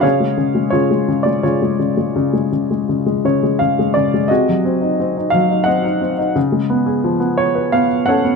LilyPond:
<<
  \new Staff \with { instrumentName = "Grand piano" } { \time 3/4 \key cis \phrygian \tempo 4 = 87 << { eis''4 cis''8. d''16 cis''8. r16 | r4. cis''8 eis''8 d''8 | dis''4. eis''8 fis''8. r16 | r4. cis''8 eis''8 fis''8 | } \\ { <gis' cis''>4 <eis' gis'>4 <eis' gis'>4~ | <eis' gis'>8 r2 r8 | <fis' gis'>4. r8 dis''4 | r2 r8 <a' cis''>8 | } >> }
  \new Staff \with { instrumentName = "Grand piano" } { \clef bass \time 3/4 \key cis \phrygian cis16 gis16 cis16 gis16 cis16 gis16 cis16 gis16 cis16 gis16 cis16 gis16 | cis16 gis16 cis16 gis16 cis16 gis16 cis16 gis16 cis16 gis16 cis16 gis16 | bis,16 fis16 bis16 dis'16 bis16 dis'16 fis16 dis'16 bis16 dis'16 bis16 dis'16 | cis16 gis16 b16 gis'16 eis16 b8 b'16 b8 cis'16 b16 | }
>>